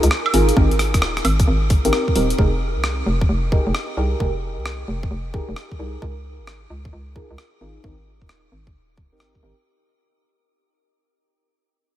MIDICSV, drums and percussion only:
0, 0, Header, 1, 2, 480
1, 0, Start_track
1, 0, Tempo, 454545
1, 597, Time_signature, 4, 2, 24, 8
1, 12632, End_track
2, 0, Start_track
2, 0, Title_t, "Drums"
2, 33, Note_on_c, 9, 42, 64
2, 115, Note_on_c, 9, 37, 123
2, 139, Note_off_c, 9, 42, 0
2, 221, Note_off_c, 9, 37, 0
2, 272, Note_on_c, 9, 76, 79
2, 356, Note_on_c, 9, 46, 102
2, 378, Note_off_c, 9, 76, 0
2, 462, Note_off_c, 9, 46, 0
2, 514, Note_on_c, 9, 42, 59
2, 598, Note_on_c, 9, 36, 120
2, 619, Note_off_c, 9, 42, 0
2, 703, Note_off_c, 9, 36, 0
2, 754, Note_on_c, 9, 42, 34
2, 837, Note_on_c, 9, 37, 65
2, 837, Note_on_c, 9, 46, 102
2, 859, Note_off_c, 9, 42, 0
2, 943, Note_off_c, 9, 37, 0
2, 943, Note_off_c, 9, 46, 0
2, 994, Note_on_c, 9, 37, 48
2, 994, Note_on_c, 9, 42, 60
2, 995, Note_on_c, 9, 36, 61
2, 1076, Note_off_c, 9, 37, 0
2, 1076, Note_on_c, 9, 37, 119
2, 1100, Note_off_c, 9, 42, 0
2, 1101, Note_off_c, 9, 36, 0
2, 1182, Note_off_c, 9, 37, 0
2, 1235, Note_on_c, 9, 37, 54
2, 1235, Note_on_c, 9, 42, 34
2, 1317, Note_on_c, 9, 46, 99
2, 1317, Note_on_c, 9, 76, 59
2, 1341, Note_off_c, 9, 37, 0
2, 1341, Note_off_c, 9, 42, 0
2, 1423, Note_off_c, 9, 46, 0
2, 1423, Note_off_c, 9, 76, 0
2, 1474, Note_on_c, 9, 42, 60
2, 1475, Note_on_c, 9, 36, 108
2, 1580, Note_off_c, 9, 42, 0
2, 1581, Note_off_c, 9, 36, 0
2, 1796, Note_on_c, 9, 46, 101
2, 1798, Note_on_c, 9, 36, 110
2, 1902, Note_off_c, 9, 46, 0
2, 1904, Note_off_c, 9, 36, 0
2, 1953, Note_on_c, 9, 42, 64
2, 2036, Note_on_c, 9, 37, 125
2, 2059, Note_off_c, 9, 42, 0
2, 2142, Note_off_c, 9, 37, 0
2, 2196, Note_on_c, 9, 36, 60
2, 2276, Note_on_c, 9, 46, 98
2, 2301, Note_off_c, 9, 36, 0
2, 2382, Note_off_c, 9, 46, 0
2, 2433, Note_on_c, 9, 42, 60
2, 2518, Note_on_c, 9, 36, 113
2, 2538, Note_off_c, 9, 42, 0
2, 2624, Note_off_c, 9, 36, 0
2, 2995, Note_on_c, 9, 37, 116
2, 3101, Note_off_c, 9, 37, 0
2, 3395, Note_on_c, 9, 36, 105
2, 3501, Note_off_c, 9, 36, 0
2, 3718, Note_on_c, 9, 36, 107
2, 3823, Note_off_c, 9, 36, 0
2, 3955, Note_on_c, 9, 37, 117
2, 4061, Note_off_c, 9, 37, 0
2, 4437, Note_on_c, 9, 36, 107
2, 4543, Note_off_c, 9, 36, 0
2, 4916, Note_on_c, 9, 37, 114
2, 5022, Note_off_c, 9, 37, 0
2, 5315, Note_on_c, 9, 36, 97
2, 5420, Note_off_c, 9, 36, 0
2, 5637, Note_on_c, 9, 36, 103
2, 5743, Note_off_c, 9, 36, 0
2, 5876, Note_on_c, 9, 37, 114
2, 5981, Note_off_c, 9, 37, 0
2, 6035, Note_on_c, 9, 36, 57
2, 6141, Note_off_c, 9, 36, 0
2, 6358, Note_on_c, 9, 36, 107
2, 6463, Note_off_c, 9, 36, 0
2, 6837, Note_on_c, 9, 37, 110
2, 6942, Note_off_c, 9, 37, 0
2, 7236, Note_on_c, 9, 36, 97
2, 7341, Note_off_c, 9, 36, 0
2, 7558, Note_on_c, 9, 36, 97
2, 7664, Note_off_c, 9, 36, 0
2, 7797, Note_on_c, 9, 37, 115
2, 7902, Note_off_c, 9, 37, 0
2, 8278, Note_on_c, 9, 36, 101
2, 8384, Note_off_c, 9, 36, 0
2, 8676, Note_on_c, 9, 36, 54
2, 8757, Note_on_c, 9, 37, 114
2, 8781, Note_off_c, 9, 36, 0
2, 8862, Note_off_c, 9, 37, 0
2, 9156, Note_on_c, 9, 36, 96
2, 9261, Note_off_c, 9, 36, 0
2, 9478, Note_on_c, 9, 36, 99
2, 9584, Note_off_c, 9, 36, 0
2, 9717, Note_on_c, 9, 37, 116
2, 9822, Note_off_c, 9, 37, 0
2, 9876, Note_on_c, 9, 36, 53
2, 9981, Note_off_c, 9, 36, 0
2, 12632, End_track
0, 0, End_of_file